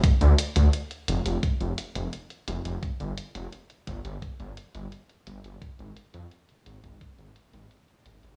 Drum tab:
HH |xxxxxxxxxxxxxxxx|xxxxxxxxxxxxxxxx|xxxxxxxxxxxxxxxx|
BD |o-------o-------|o-----o-o-------|o------oo-------|